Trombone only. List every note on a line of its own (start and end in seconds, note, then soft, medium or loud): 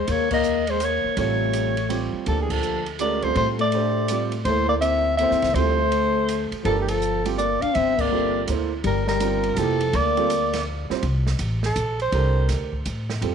0.00 0.10 G#3 medium
0.09 0.31 A#3 medium
0.32 0.71 A#3 medium
0.69 0.83 G#3 medium
0.82 1.18 A#3 medium
1.18 2.10 A3 medium
2.28 2.41 F3 medium
2.42 2.52 E3 soft
2.50 2.87 F3 medium
2.99 3.22 A3 medium
3.22 3.35 A3 medium
3.36 3.47 A3 medium
3.59 4.28 A3 medium
4.45 4.67 A3 medium
4.68 4.74 A#3 medium
4.80 5.15 C4 medium
5.18 5.56 C4 medium
5.55 6.52 A3 medium
6.63 6.78 F3 medium
6.80 6.89 E3 medium
6.87 7.25 F3 medium
7.37 7.63 A#3 medium
7.61 7.76 D4 medium
7.74 8.00 C4 medium
7.99 8.42 A#3 medium
8.84 9.06 G3 medium
9.07 9.59 G3 medium
9.58 9.95 F3 medium
9.94 10.67 A#3 loud